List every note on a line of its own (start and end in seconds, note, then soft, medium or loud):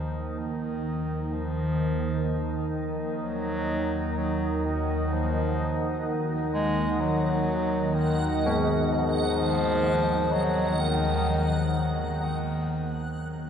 0.00 12.71 D#2 medium
0.00 4.17 D#3 soft
0.00 12.71 D#3 medium
0.00 0.40 F3 loud
0.00 12.75 D#4 medium
0.00 12.75 A#4 medium
0.38 1.35 D#3 medium
0.38 6.48 D#5 medium
1.33 2.96 F3 loud
1.99 12.74 F#5 medium
3.23 4.13 F#3 loud
4.17 4.66 F#3 loud
4.65 5.14 D#3 medium
5.12 6.08 F3 medium
5.12 12.75 F#5 medium
6.49 12.74 D#5 medium
6.54 7.02 G#3 loud
7.01 7.96 F#3 loud
7.95 8.68 D#3 medium
8.46 13.50 G#3 medium
8.90 10.34 F3 loud
10.32 10.82 F#3 loud
10.80 12.25 D#3 loud
12.72 13.50 D#2 medium
12.72 13.50 D#3 medium
12.76 13.50 F#5 medium